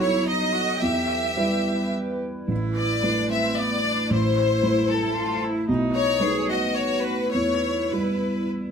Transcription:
0.00 0.85 B1 medium
0.00 0.79 F#3 soft
0.00 0.83 F#3 medium
0.00 0.79 D#4 soft
0.00 0.83 D#4 medium
0.00 0.29 E4 medium
0.00 0.79 A4 soft
0.00 0.83 A4 medium
0.00 0.27 C#5 medium
0.27 0.54 D#4 soft
0.27 0.82 D#5 medium
0.53 0.80 F#4 soft
0.80 1.36 E2 soft
0.80 2.50 G3 medium
0.80 5.68 E4 medium
0.80 2.18 G4 soft
0.80 4.11 B4 medium
0.80 1.94 E5 medium
1.36 2.45 G3 soft
1.36 2.45 E4 soft
1.36 2.45 B4 soft
2.48 3.02 A1 soft
2.48 7.32 A3 medium
2.48 3.05 E4 soft
2.77 3.27 D5 medium
3.03 4.06 A3 soft
3.03 3.32 D4 soft
3.03 4.06 E4 soft
3.03 4.06 B4 soft
3.30 3.58 C4 soft
3.30 3.58 E5 medium
3.57 3.83 B3 soft
3.57 4.11 D5 medium
3.83 4.11 D4 soft
4.10 4.62 A1 soft
4.10 5.17 E4 soft
4.10 4.89 C5 medium
4.10 5.69 C5 medium
4.63 5.64 A3 soft
4.63 5.64 E4 soft
4.63 5.64 C5 soft
4.89 5.42 A4 medium
5.16 5.45 F4 medium
5.44 5.69 E4 medium
5.68 6.20 B1 medium
5.68 7.33 D#4 medium
5.68 6.24 D#4 medium
5.68 8.71 B4 medium
5.95 6.45 C#5 medium
6.20 7.29 A3 soft
6.20 7.29 D#4 soft
6.20 6.51 G#4 medium
6.20 7.29 B4 soft
6.50 7.33 F#4 soft
6.50 6.76 D#5 medium
6.74 7.03 C#5 medium
7.03 7.32 B4 medium
7.32 7.91 E2 soft
7.32 8.71 G3 medium
7.32 8.71 E4 soft
7.32 8.71 E4 medium
7.32 7.90 C#5 medium
7.92 8.71 G3 soft
7.92 8.71 E4 soft
7.92 8.50 B4 soft
7.92 8.71 B4 soft

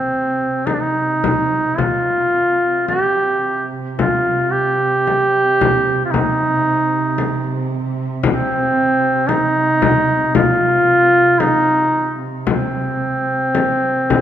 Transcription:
0.00 14.21 C3 soft
0.00 0.68 C4 medium
0.66 0.74 D#4 medium
0.66 frame drum medium
0.73 0.81 D4 medium
0.80 1.80 D#4 medium
1.24 frame drum medium
1.78 2.87 F4 loud
1.78 frame drum medium
2.87 3.67 G4 loud
2.87 frame drum soft
3.97 4.52 F4 loud
3.97 frame drum medium
4.51 6.05 G4 loud
5.07 frame drum soft
5.61 frame drum medium
6.05 6.12 F4 medium
6.11 7.69 D#4 medium
6.11 frame drum medium
7.18 frame drum medium
8.23 9.30 C4 medium
8.23 frame drum medium
9.29 10.35 D#4 loud
9.29 frame drum medium
9.82 frame drum medium
10.35 11.42 F4 loud
10.35 frame drum medium
11.40 12.21 D#4 loud
11.40 frame drum medium
12.47 14.21 C4 medium
12.47 frame drum medium
13.55 frame drum medium
14.10 frame drum medium

